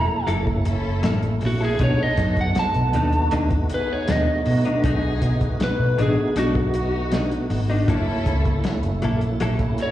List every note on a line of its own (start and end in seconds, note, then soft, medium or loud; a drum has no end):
0.00 1.77 A3 medium
0.00 1.75 A#3 medium
0.00 1.76 C#4 medium
0.00 1.76 E4 medium
0.00 0.28 A#5 medium
0.08 muted clean electric guitar stroke soft
0.27 0.62 F#1 medium
0.27 0.47 F#3 medium
0.27 0.47 A#3 medium
0.27 0.46 E4 medium
0.27 0.46 A4 medium
0.27 closed hi-hat medium
0.47 muted clean electric guitar stroke soft
0.47 kick medium
0.65 1.00 F#1 medium
0.65 1.23 C#4 medium
0.65 1.23 E4 medium
0.65 1.24 A4 medium
0.65 muted clean electric guitar stroke soft
0.65 closed hi-hat medium
1.03 1.38 A1 medium
1.03 1.23 F#3 medium
1.03 1.23 A#3 medium
1.03 1.22 E4 medium
1.03 1.22 A4 medium
1.03 snare loud
1.03 closed hi-hat medium
1.23 muted clean electric guitar stroke soft
1.23 closed hi-hat soft
1.41 1.76 A#1 medium
1.41 muted clean electric guitar stroke soft
1.41 open hi-hat medium
1.46 1.65 F#4 medium
1.61 1.80 A#3 soft
1.61 1.81 E4 soft
1.61 1.81 G#4 medium
1.61 1.80 A4 soft
1.79 1.97 B1 medium
1.79 1.99 B2 medium
1.79 7.84 A3 medium
1.79 1.99 A3 medium
1.79 7.84 B3 medium
1.79 1.99 D4 medium
1.79 2.56 D#4 medium
1.79 7.85 D#4 medium
1.79 1.98 D#4 medium
1.79 7.85 F#4 medium
1.79 2.56 A4 medium
1.79 kick loud
1.79 closed hi-hat medium
1.83 2.03 C#5 medium
1.99 2.38 D#5 medium
1.99 muted clean electric guitar stroke soft
2.17 2.51 F#2 loud
2.17 muted clean electric guitar stroke soft
2.17 kick medium
2.17 snare soft
2.17 closed hi-hat medium
2.37 kick medium
2.37 closed hi-hat soft
2.41 2.57 F#5 medium
2.55 muted clean electric guitar stroke soft
2.55 snare loud
2.55 closed hi-hat medium
2.59 3.32 A5 loud
2.74 2.92 B1 medium
2.74 closed hi-hat soft
2.93 3.28 D#2 loud
2.93 3.13 B2 medium
2.93 3.13 A3 medium
2.93 3.13 D4 medium
2.93 3.12 D#4 medium
2.93 closed hi-hat medium
3.13 muted clean electric guitar stroke soft
3.13 closed hi-hat soft
3.31 3.66 D#2 loud
3.31 3.51 B2 medium
3.31 3.51 A3 medium
3.31 3.50 D4 medium
3.31 3.50 D#4 medium
3.31 closed hi-hat medium
3.50 muted clean electric guitar stroke soft
3.50 kick medium
3.50 closed hi-hat soft
3.69 4.28 D#4 medium
3.69 4.28 G#4 medium
3.69 muted clean electric guitar stroke soft
3.69 closed hi-hat medium
3.74 3.93 B4 medium
3.93 4.12 C#5 medium
4.08 4.25 D#2 medium
4.08 4.27 B2 soft
4.08 4.28 A3 medium
4.08 4.27 D4 medium
4.08 4.27 D#4 medium
4.08 5.58 D#5 medium
4.08 snare loud
4.08 closed hi-hat medium
4.28 muted clean electric guitar stroke soft
4.46 4.63 B2 loud
4.46 muted clean electric guitar stroke soft
4.46 open hi-hat medium
4.65 4.83 A3 soft
4.65 4.84 D4 soft
4.65 4.84 D#4 soft
4.65 closed hi-hat soft
4.84 5.18 B1 medium
4.84 5.03 B2 medium
4.84 5.04 A3 medium
4.84 5.03 D4 medium
4.84 5.60 D#4 medium
4.84 5.02 D#4 medium
4.84 5.60 G#4 medium
4.84 kick loud
4.84 closed hi-hat medium
5.03 muted clean electric guitar stroke medium
5.22 5.56 B2 medium
5.22 muted clean electric guitar stroke soft
5.22 kick medium
5.22 closed hi-hat medium
5.41 kick medium
5.41 closed hi-hat soft
5.60 5.99 B4 medium
5.60 muted clean electric guitar stroke soft
5.60 snare loud
5.60 closed hi-hat medium
5.79 5.96 B2 medium
5.98 6.15 A1 medium
5.98 6.17 B2 medium
5.98 6.18 A3 medium
5.98 6.18 D4 medium
5.98 6.17 D#4 medium
5.98 closed hi-hat medium
6.02 6.37 G#4 medium
6.18 muted clean electric guitar stroke soft
6.36 7.37 B1 medium
6.36 6.56 B2 medium
6.36 6.56 A3 medium
6.36 6.56 D4 medium
6.36 6.55 D#4 medium
6.36 7.12 F#4 loud
6.36 closed hi-hat medium
6.55 muted clean electric guitar stroke soft
6.55 kick medium
6.74 7.32 D#4 medium
6.74 7.32 F#4 medium
6.74 muted clean electric guitar stroke soft
6.74 closed hi-hat medium
7.12 7.32 B2 medium
7.12 7.31 A3 medium
7.12 7.31 D4 medium
7.12 7.30 D#4 medium
7.12 snare loud
7.12 closed hi-hat medium
7.31 muted clean electric guitar stroke soft
7.31 closed hi-hat soft
7.50 7.84 G#1 loud
7.50 muted clean electric guitar stroke soft
7.50 open hi-hat medium
7.70 7.88 A3 soft
7.70 7.88 D4 medium
7.70 7.88 D#4 medium
7.87 8.05 F#1 loud
7.87 8.08 F#3 medium
7.87 9.91 A3 medium
7.87 9.91 A#3 medium
7.87 8.07 A#3 medium
7.87 9.91 C#4 medium
7.87 8.65 C#4 medium
7.87 8.65 E4 medium
7.87 9.91 E4 medium
7.87 8.07 E4 loud
7.87 8.65 A4 loud
7.87 8.06 A4 medium
7.87 kick loud
7.87 closed hi-hat medium
8.07 muted clean electric guitar stroke medium
8.26 8.60 C#2 medium
8.26 muted clean electric guitar stroke soft
8.26 kick medium
8.26 closed hi-hat medium
8.45 kick medium
8.45 closed hi-hat soft
8.64 muted clean electric guitar stroke soft
8.64 snare loud
8.64 closed hi-hat medium
8.83 9.00 F#1 medium
8.83 closed hi-hat soft
9.02 9.36 A#1 medium
9.02 9.22 F#3 medium
9.02 9.22 A#3 medium
9.02 9.22 E4 medium
9.02 9.21 A4 medium
9.02 closed hi-hat medium
9.21 muted clean electric guitar stroke soft
9.21 closed hi-hat soft
9.40 9.74 A#1 loud
9.40 9.60 F#3 medium
9.40 9.60 A#3 medium
9.40 9.59 E4 loud
9.40 9.58 A4 loud
9.40 closed hi-hat medium
9.59 muted clean electric guitar stroke soft
9.59 kick medium
9.59 closed hi-hat soft
9.78 9.91 C#4 medium
9.78 9.91 E4 medium
9.78 9.91 F#4 medium
9.78 muted clean electric guitar stroke soft
9.78 closed hi-hat medium
9.82 9.91 C#5 medium